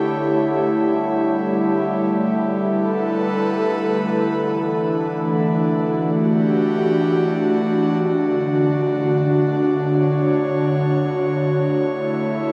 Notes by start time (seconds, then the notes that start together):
Already playing: D3 A3 E4 G4 C#5
0.84 G3
2.46 A4 B4
4.44 E3
4.65 D4
5.78 F#4
6.03 G4
8.05 D3
9.66 C#5
11.62 A3
11.76 E4